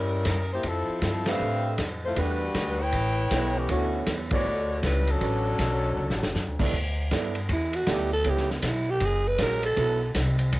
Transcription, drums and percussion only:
0.25 kick, snare, hi-hat pedal, ride
0.63 kick, ride
1.02 kick, snare, hi-hat pedal, ride
1.26 snare, ride
1.78 kick, snare, hi-hat pedal, ride
2.16 kick, ride
2.55 kick, snare, hi-hat pedal, ride
2.92 kick, ride
3.31 kick, snare, hi-hat pedal, ride
3.69 kick, ride
4.06 kick, snare, hi-hat pedal, ride
4.31 kick, ride
4.83 kick, snare, hi-hat pedal, ride
5.07 ride
5.21 kick, ride
5.59 kick, snare, hi-hat pedal, ride
6.10 snare
6.23 snare
6.35 snare, hi-hat pedal
6.59 kick, crash
6.73 kick
7.11 kick, snare, hi-hat pedal, ride
7.35 ride
7.49 kick, ride
7.73 ride
7.87 kick, snare, hi-hat pedal, ride
8.24 kick, ride
8.37 snare
8.51 snare
8.62 kick, snare, hi-hat pedal, ride
9.00 kick, ride
9.38 kick, snare, hi-hat pedal, ride
9.63 ride
9.77 kick, ride
10.15 kick, snare, hi-hat pedal, ride
10.39 ride
10.53 kick, ride

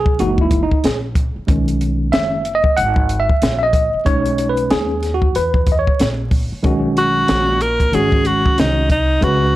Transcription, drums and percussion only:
0.06 kick
0.19 closed hi-hat
0.38 kick
0.51 kick, closed hi-hat
0.71 kick
0.84 snare, closed hi-hat
1.15 kick, closed hi-hat
1.48 kick, closed hi-hat
1.68 closed hi-hat
1.81 closed hi-hat
2.13 snare, closed hi-hat
2.45 closed hi-hat
2.64 kick
2.77 closed hi-hat
2.96 kick
3.09 closed hi-hat
3.29 kick
3.42 snare, closed hi-hat
3.73 kick, closed hi-hat
4.06 kick, closed hi-hat
4.26 closed hi-hat
4.38 closed hi-hat
4.57 closed hi-hat
4.70 snare, closed hi-hat
5.03 snare, closed hi-hat
5.22 kick
5.35 closed hi-hat
5.54 kick
5.67 kick, closed hi-hat
5.87 kick
5.99 snare, closed hi-hat
6.31 kick, open hi-hat
6.64 kick, closed hi-hat
6.97 closed hi-hat
7.28 snare, closed hi-hat
7.61 closed hi-hat
7.80 kick, closed hi-hat
7.93 closed hi-hat
8.12 kick
8.25 closed hi-hat
8.46 kick
8.58 snare, closed hi-hat
8.90 kick, closed hi-hat
9.22 kick, closed hi-hat

